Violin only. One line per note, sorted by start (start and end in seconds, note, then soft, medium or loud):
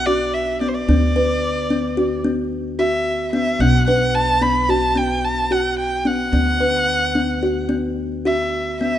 0.06 0.35 D5 medium
0.34 0.61 E5 medium
0.61 0.70 D5 medium
0.68 0.76 C5 medium
0.75 2.24 D5 medium
2.79 3.29 E5 medium
3.33 3.62 E5 medium
3.61 3.87 F#5 medium
3.88 4.16 F#5 medium
4.15 4.44 A5 medium
4.42 4.71 B5 medium
4.70 4.99 A5 medium
4.97 5.27 G5 medium
5.25 5.53 A5 medium
5.52 5.78 F#5 medium
5.79 6.09 G5 medium
6.07 7.70 F#5 medium
8.26 8.77 E5 medium
8.82 8.99 E5 medium